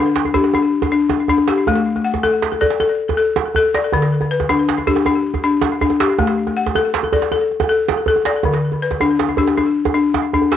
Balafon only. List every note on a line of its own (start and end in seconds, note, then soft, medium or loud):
0.00 0.33 D4 medium
0.00 0.34 B4 medium
0.34 0.53 D4 medium
0.34 0.91 G4 medium
0.55 0.91 D4 medium
0.92 1.28 D4 medium
1.29 1.67 D4 medium
1.49 1.86 G4 medium
1.68 2.05 A3 medium
2.04 2.61 F#5 medium
2.23 2.60 A4 medium
2.61 2.79 A4 medium
2.61 3.17 D5 medium
2.80 3.16 A4 medium
3.17 3.55 A4 medium
3.56 3.93 A4 medium
3.75 4.12 D5 medium
3.94 4.31 D3 medium
4.31 4.87 B4 medium
4.49 4.86 D4 medium
4.87 5.05 D4 medium
4.87 5.44 G4 medium
5.06 5.43 D4 medium
5.44 5.80 D4 medium
5.82 6.19 D4 medium
6.00 6.38 G4 medium
6.19 6.56 A3 medium
6.57 7.13 F#5 medium
6.76 7.12 A4 medium
7.13 7.31 A4 medium
7.13 7.70 D5 medium
7.32 7.68 A4 medium
7.69 8.07 A4 medium
8.08 8.45 A4 medium
8.26 8.63 D5 medium
8.45 8.82 D3 medium
8.82 9.39 B4 medium
9.01 9.37 D4 medium
9.38 9.56 D4 medium
9.38 9.95 G4 medium
9.57 9.93 D4 medium
9.94 10.32 D4 medium
10.34 10.57 D4 medium
10.52 10.57 G4 medium